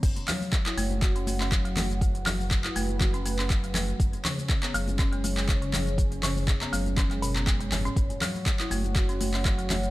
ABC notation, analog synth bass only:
X:1
M:4/4
L:1/8
Q:"Swing 16ths" 1/4=121
K:F#m
V:1 name="Analog synth bass" clef=bass
F,,, z2 F,,,4- F,,,- | F,,,3 F,,,4- F,,, | F,,, z2 F,,,4- F,,,- | F,,,3 F,,,4 F,,, |
F,,, z2 F,,,4- F,,, |]